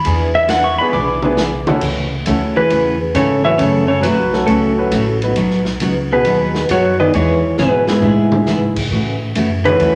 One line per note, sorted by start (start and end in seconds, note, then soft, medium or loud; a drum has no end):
0.05 0.76 E2 loud
0.05 0.28 E3 medium
0.05 0.28 B3 medium
0.05 0.29 D4 medium
0.05 0.29 G#4 medium
0.05 ride medium
0.35 0.49 E5 medium
0.49 0.61 E3 medium
0.49 0.62 B3 medium
0.49 0.62 D4 medium
0.49 0.62 G#4 medium
0.49 0.64 F#5 medium
0.49 snare medium
0.49 hi-hat pedal medium
0.49 ride medium
0.64 0.78 C#6 medium
0.79 0.93 B3 medium
0.79 0.93 D4 medium
0.79 0.93 E4 medium
0.79 0.93 G#4 medium
0.79 0.93 B4 medium
0.79 0.93 B5 medium
0.93 1.65 B1 medium
0.93 1.16 E3 medium
0.93 1.17 B3 medium
0.93 1.17 D4 medium
0.93 1.17 G#4 medium
0.93 1.79 D6 loud
0.93 mid tom medium
1.22 1.36 B3 medium
1.22 1.37 D4 medium
1.22 1.37 E4 medium
1.22 1.37 G#4 medium
1.22 1.37 B4 medium
1.22 mid tom medium
1.37 1.50 E3 medium
1.37 1.50 B3 medium
1.37 1.50 D4 medium
1.37 1.50 G#4 medium
1.37 snare medium
1.37 hi-hat pedal medium
1.67 1.80 A3 medium
1.67 1.81 C#4 medium
1.67 1.81 E4 medium
1.67 1.81 F#4 medium
1.67 1.81 A4 medium
1.67 mid tom loud
1.81 2.25 C#2 medium
1.81 2.05 C#3 soft
1.81 2.05 E3 medium
1.81 2.05 A3 medium
1.81 2.05 C#4 medium
1.81 2.06 F#4 medium
1.81 kick medium
1.81 crash medium
2.26 2.70 D2 loud
2.26 2.39 C#3 medium
2.26 2.39 E3 medium
2.26 2.39 A3 medium
2.26 2.54 A3 medium
2.26 2.39 C#4 medium
2.26 2.54 C#4 medium
2.26 2.54 E4 medium
2.26 2.39 F#4 medium
2.26 2.54 F#4 medium
2.26 2.54 A4 medium
2.26 hi-hat pedal medium
2.26 ride medium
2.56 2.98 E3 medium
2.56 2.98 G#4 medium
2.56 2.98 B4 loud
2.70 3.13 E2 medium
2.70 2.94 C#3 medium
2.70 2.94 E3 medium
2.70 2.94 A3 medium
2.70 2.94 C#4 medium
2.70 2.94 F#4 medium
2.70 ride medium
3.15 3.58 G#2 loud
3.15 3.43 C#3 medium
3.15 3.27 C#3 medium
3.15 3.27 E3 medium
3.15 3.27 A3 medium
3.15 3.28 C#4 medium
3.15 3.28 F#4 medium
3.15 3.44 A4 medium
3.15 3.45 C#5 medium
3.15 hi-hat pedal medium
3.15 ride medium
3.44 3.58 E3 medium
3.44 3.58 F#3 medium
3.44 3.58 A3 medium
3.44 3.58 C#4 medium
3.44 3.58 F#4 medium
3.44 3.58 B4 medium
3.44 3.57 C#5 medium
3.44 3.60 E5 loud
3.58 4.02 F#2 medium
3.58 3.86 C#3 medium
3.58 3.83 C#3 medium
3.58 3.83 F#3 medium
3.58 3.83 A3 medium
3.58 3.83 C#4 medium
3.58 3.83 F#4 medium
3.58 3.88 A4 medium
3.58 3.86 C#5 loud
3.58 ride medium
3.87 4.01 C#3 medium
3.87 4.02 A4 medium
3.87 4.04 C#5 loud
4.01 4.46 B1 medium
4.01 4.16 C#3 medium
4.01 4.43 F#3 medium
4.01 4.16 F#3 medium
4.01 4.16 A3 medium
4.01 4.16 C#4 medium
4.01 4.16 F#4 medium
4.01 4.44 B4 medium
4.01 hi-hat pedal medium
4.01 ride medium
4.05 4.46 F#4 medium
4.33 4.46 F#3 medium
4.33 4.46 A3 medium
4.33 4.46 C#4 medium
4.33 4.47 F#4 medium
4.33 4.47 A4 medium
4.33 snare soft
4.46 4.91 C#2 medium
4.46 5.17 A2 medium
4.46 4.71 C#3 medium
4.46 4.71 F#3 medium
4.46 4.71 A3 medium
4.46 4.71 C#4 medium
4.46 4.71 F#4 medium
4.46 5.19 F#4 medium
4.46 5.18 A4 medium
4.46 ride medium
4.78 4.91 F#3 medium
4.78 4.91 A3 medium
4.78 4.91 C#4 medium
4.78 4.91 F#4 medium
4.78 4.91 B4 medium
4.91 5.35 A1 medium
4.91 5.04 C#3 medium
4.91 5.04 F#3 medium
4.91 5.04 A3 medium
4.91 5.04 C#4 medium
4.91 5.05 F#4 medium
4.91 hi-hat pedal medium
4.91 ride medium
5.22 5.35 F#3 medium
5.22 5.36 B3 medium
5.22 5.36 D#4 medium
5.22 5.36 F#4 medium
5.22 5.36 B4 medium
5.22 ride medium
5.36 5.80 B1 medium
5.36 5.59 B2 medium
5.36 5.60 F#3 medium
5.36 5.60 B3 medium
5.36 5.60 D#4 medium
5.36 5.60 F#4 medium
5.36 ride medium
5.50 snare soft
5.65 snare soft
5.80 6.24 C#2 loud
5.80 5.93 B2 medium
5.80 5.93 F#3 medium
5.80 5.93 B3 medium
5.80 5.94 D#4 medium
5.80 5.94 F#4 medium
5.80 hi-hat pedal medium
5.80 ride medium
6.12 6.66 B2 medium
6.12 6.66 G#4 medium
6.12 6.71 B4 medium
6.25 6.68 D#2 medium
6.25 6.48 B2 medium
6.25 6.49 F#3 medium
6.25 6.94 F#3 medium
6.25 6.49 B3 medium
6.25 6.94 B3 medium
6.25 6.49 D#4 medium
6.25 6.94 D#4 medium
6.25 6.49 F#4 medium
6.25 6.94 F#4 medium
6.25 6.94 B4 medium
6.25 ride medium
6.55 snare medium
6.69 7.12 F#2 medium
6.69 6.82 B2 medium
6.69 6.82 F#3 medium
6.69 6.98 F#3 medium
6.69 6.82 B3 medium
6.69 6.82 D#4 medium
6.69 6.82 F#4 medium
6.69 6.98 F#4 medium
6.69 6.99 C#5 medium
6.69 hi-hat pedal medium
6.69 ride medium
7.00 7.13 D#3 medium
7.00 7.13 G#3 medium
7.00 7.13 B3 medium
7.00 7.13 E4 medium
7.00 7.13 G#4 medium
7.00 7.13 B4 medium
7.00 7.13 D5 medium
7.00 7.13 D#5 medium
7.14 7.57 E2 medium
7.14 7.37 E3 medium
7.14 7.55 E3 medium
7.14 7.37 G#3 medium
7.14 7.37 B3 medium
7.14 7.37 E4 medium
7.14 7.37 G#4 medium
7.14 7.56 G#4 medium
7.14 7.59 C#5 loud
7.14 ride medium
7.58 8.01 G#2 loud
7.58 7.86 B2 medium
7.58 7.71 E3 medium
7.58 7.71 G#3 medium
7.58 7.71 B3 medium
7.58 7.71 E4 medium
7.58 7.71 G#4 medium
7.58 7.87 G#4 medium
7.58 7.90 B4 medium
7.58 snare soft
7.58 hi-hat pedal medium
7.87 8.73 G#2 medium
7.87 8.44 G#3 medium
7.87 8.44 B3 medium
7.87 8.44 E4 medium
7.87 8.73 E4 medium
7.87 8.73 G#4 medium
7.87 8.45 G#4 medium
7.87 8.45 B4 medium
7.87 snare medium
8.02 8.45 A2 medium
8.02 8.26 E3 medium
8.02 8.26 G#3 medium
8.02 8.26 B3 medium
8.02 8.26 E4 medium
8.02 8.26 G#4 medium
8.02 mid tom medium
8.32 mid tom loud
8.46 8.90 G#2 medium
8.46 8.59 E3 medium
8.46 8.59 G#3 medium
8.46 8.59 B3 medium
8.46 8.59 E4 medium
8.46 8.60 G#4 medium
8.46 snare medium
8.46 hi-hat pedal medium
8.76 kick medium
8.76 crash medium
8.91 9.34 A2 medium
8.91 9.14 C#3 medium
8.91 9.15 E3 medium
8.91 9.15 A3 medium
8.91 9.15 C#4 medium
8.91 9.15 F#4 medium
9.35 9.78 F#2 medium
9.35 9.48 C#3 medium
9.35 9.48 E3 medium
9.35 9.48 A3 medium
9.35 9.48 C#4 medium
9.35 9.48 F#4 medium
9.35 hi-hat pedal medium
9.35 ride medium
9.65 9.95 E3 medium
9.65 9.95 A3 medium
9.65 9.95 C#4 medium
9.65 9.95 E4 medium
9.65 9.95 F#4 medium
9.65 9.95 G#4 medium
9.65 9.95 B4 loud
9.65 9.95 C#5 medium
9.65 ride medium
9.79 9.95 E2 medium
9.79 9.95 C#3 medium
9.79 9.95 E3 medium
9.79 9.95 A3 medium
9.79 9.95 C#4 medium
9.79 9.95 F#4 medium
9.79 ride medium